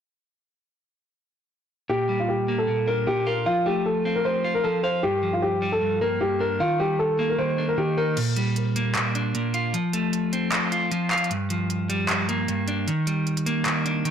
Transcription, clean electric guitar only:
1.89 2.67 A#2 medium
2.09 3.07 G3 medium
2.48 3.46 A#3 medium
2.68 3.06 A#2 medium
2.88 3.46 D4 medium
3.07 3.46 A#2 medium
3.27 3.46 F4 medium
3.46 4.24 F3 medium
3.66 4.64 A3 medium
4.05 5.03 C4 medium
4.25 4.63 F3 medium
4.44 4.83 F4 medium
4.64 5.03 F3 medium
4.84 5.03 F5 medium
5.03 5.81 G2 loud
5.23 6.21 F3 medium
5.62 6.01 G3 loud
5.82 6.20 G2 medium
6.01 6.60 A#3 medium
6.21 6.60 G2 medium
6.40 6.60 D4 medium
6.60 7.37 D#3 medium
6.80 7.78 G3 medium
7.19 8.17 A#3 loud
7.39 7.77 D#3 medium
7.58 7.97 D4 medium
7.78 8.17 D#3 medium
7.98 8.17 D#4 medium
8.17 8.94 A#2 medium
8.37 9.35 G3 medium
8.76 9.74 A#3 medium
8.95 9.33 A#2 medium
9.15 9.74 D4 medium
9.35 9.74 A#2 medium
9.54 9.74 F4 medium
9.74 10.51 F3 medium
9.94 10.92 A3 medium
10.33 11.31 C4 medium
10.52 10.90 F3 medium
10.72 11.11 F4 medium
10.92 11.31 F3 medium
11.11 11.31 F5 medium
11.31 12.08 G2 loud
11.50 12.48 F3 medium
11.89 12.28 G3 loud
12.09 12.47 G2 medium
12.29 12.88 A#3 medium
12.48 12.88 G2 medium
12.68 12.88 D4 medium
12.88 13.65 D#3 medium
13.07 14.05 G3 medium
13.46 14.11 A#3 loud
13.66 14.04 D#3 medium
13.86 14.11 D4 medium
14.05 14.11 D#3 medium

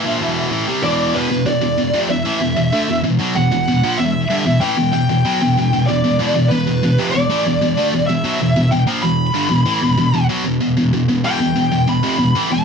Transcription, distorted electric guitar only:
0.05 0.20 A#2 medium
0.05 0.21 F3 loud
0.20 0.51 E2 loud
0.20 0.52 B2 loud
0.20 0.52 E3 loud
0.52 0.67 A2 medium
0.52 0.68 E3 medium
0.68 0.83 C3 medium
0.68 0.84 G3 loud
0.84 1.14 E2 loud
0.84 1.15 B2 medium
0.84 1.15 E3 loud
1.15 1.29 E2 medium
1.15 1.30 B2 loud
1.31 1.45 E2 medium
1.31 1.45 B2 medium
1.46 1.60 E2 medium
1.46 1.61 B2 medium
1.62 1.77 E2 medium
1.62 1.77 B2 medium
1.78 1.93 E2 medium
1.78 1.94 B2 medium
1.94 2.09 F2 medium
1.94 2.09 C3 medium
2.10 2.26 E2 medium
2.10 2.25 B2 medium
2.25 2.40 A2 medium
2.25 2.41 E3 loud
2.41 2.55 E2 medium
2.41 2.56 B2 medium
2.57 2.73 E2 medium
2.57 2.72 B2 medium
2.73 2.88 D3 loud
2.73 2.88 A3 loud
2.89 3.03 E2 medium
2.89 3.04 B2 medium
3.04 3.20 E2 medium
3.04 3.18 B2 medium
3.20 3.35 B2 medium
3.20 3.35 F#3 loud
3.36 3.51 E2 medium
3.36 3.51 B2 medium
3.52 3.67 E2 medium
3.52 3.67 B2 medium
3.68 3.84 E2 medium
3.68 3.83 B2 medium
3.83 3.98 A#2 medium
3.83 3.99 F3 loud
3.99 4.24 E2 medium
3.99 4.24 B2 medium
4.30 4.45 G2 loud
4.30 4.46 D3 loud
4.46 4.62 E2 medium
4.46 4.61 B2 medium
4.61 4.77 A2 medium
4.61 4.77 E3 loud
4.77 4.92 E2 medium
4.77 4.92 B2 medium
4.93 5.08 E2 medium
4.93 5.08 B2 medium
5.09 5.25 E2 medium
5.09 5.23 B2 medium
5.25 5.40 B2 loud
5.25 5.40 F#3 loud
5.41 5.56 E2 medium
5.41 5.56 B2 medium
5.57 5.72 E2 medium
5.57 5.72 B2 medium
5.73 5.87 E2 medium
5.73 5.88 B2 medium
5.89 6.03 E2 medium
5.89 6.04 B2 medium
6.04 6.19 E2 medium
6.04 6.20 B2 medium
6.20 6.34 E2 loud
6.20 6.35 B2 loud
6.36 6.50 E2 medium
6.36 6.50 B2 medium
6.51 6.66 E2 medium
6.51 6.66 B2 medium
6.67 6.82 E2 medium
6.67 6.82 B2 medium
6.83 6.98 E2 medium
6.83 6.98 B2 medium
6.98 7.14 F2 medium
6.98 7.14 C3 loud
7.15 7.31 E2 medium
7.15 7.29 B2 medium
7.30 7.45 A2 medium
7.30 7.45 E3 loud
7.46 7.60 E2 medium
7.46 7.61 B2 medium
7.61 7.78 E2 medium
7.61 7.77 B2 medium
7.77 7.92 D3 loud
7.77 7.93 A3 loud
7.93 8.07 E2 medium
7.93 8.08 B2 medium
8.09 8.25 E2 medium
8.09 8.23 B2 medium
8.24 8.39 B2 medium
8.24 8.40 F#3 loud
8.41 8.55 E2 medium
8.41 8.55 B2 medium
8.56 8.71 E2 medium
8.56 8.71 B2 medium
8.72 8.88 E2 medium
8.72 8.86 B2 medium
8.87 9.02 A#2 medium
8.87 9.03 F3 loud
9.03 9.29 E2 medium
9.03 9.29 B2 medium
9.34 9.49 G2 medium
9.34 9.50 D3 loud
9.50 9.66 E2 medium
9.50 9.65 B2 medium
9.66 9.81 A2 medium
9.66 9.82 E3 loud
9.82 9.96 E2 medium
9.82 9.96 B2 medium
9.97 10.12 E2 medium
9.97 10.13 B2 medium
10.14 10.30 E2 medium
10.14 10.28 B2 medium
10.29 10.44 B2 medium
10.29 10.45 F#3 loud
10.45 10.59 E2 medium
10.45 10.60 B2 medium
10.61 10.76 E2 medium
10.61 10.76 B2 medium
10.77 10.92 E2 medium
10.77 10.92 B2 medium
10.93 11.07 E2 medium
10.93 11.08 B2 medium
11.08 11.23 E2 medium
11.08 11.23 B2 medium
11.24 11.39 E2 loud
11.24 11.39 B2 loud
11.40 11.54 E2 medium
11.40 11.55 B2 medium
11.56 11.70 E2 medium
11.56 11.71 B2 medium
11.72 11.86 E2 medium
11.72 11.87 B2 medium
11.88 12.03 E2 medium
11.88 12.04 B2 medium
12.03 12.18 F2 medium
12.03 12.19 C3 loud
12.19 12.35 E2 medium
12.19 12.35 B2 medium
12.35 12.50 A2 loud
12.35 12.50 E3 loud
12.51 12.64 E2 medium
12.51 12.64 B2 medium

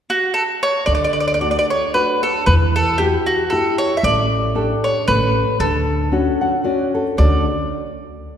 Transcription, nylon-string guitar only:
0.87 1.39 D3 soft
1.41 1.83 A3 soft
1.41 1.84 D4 soft
1.41 1.84 F#4 soft
1.94 2.37 A3 soft
1.94 2.37 D4 soft
1.94 2.37 F#4 soft
2.46 2.98 E3 soft
3.00 3.41 E4 soft
3.00 3.41 F#4 soft
3.00 3.42 G4 soft
3.52 3.94 E4 soft
3.52 3.94 F#4 soft
3.52 3.94 G4 soft
4.03 4.54 A3 soft
4.55 4.97 D4 soft
4.55 4.98 G4 soft
4.55 4.98 A4 soft
5.08 5.59 A3 medium
5.60 6.11 D3 soft
6.12 6.54 C#4 soft
6.12 6.54 D4 soft
6.12 6.55 F#4 soft
6.41 6.64 F#5 medium
6.64 7.07 C#4 soft
6.64 7.07 D4 soft
6.64 7.08 F#4 soft
6.64 6.92 D5 medium
6.95 7.17 A4 soft
7.17 7.44 D3 soft
7.17 7.44 A3 soft
7.17 7.45 C#4 soft
7.17 7.45 F#4 soft
7.17 7.45 A4 soft

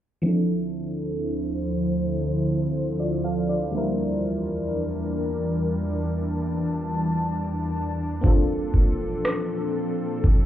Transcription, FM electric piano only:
0.22 3.69 F3 medium
0.22 3.70 C4 medium
0.22 3.70 D4 medium
0.26 2.21 E4 medium
0.26 2.22 A4 medium
3.00 3.23 F4 medium
3.00 3.23 D5 medium
3.24 3.48 A4 medium
3.24 3.48 F5 medium
3.49 3.97 F4 medium
3.49 3.97 D5 medium
3.71 7.69 G3 medium
3.71 7.70 A#3 medium
3.71 7.70 D4 medium
3.76 7.71 E4 medium
3.76 7.72 A#4 medium
8.21 10.46 A#3 medium
8.21 10.46 C4 medium
8.21 10.46 D4 medium
8.26 10.46 F4 medium
8.26 10.46 A4 medium

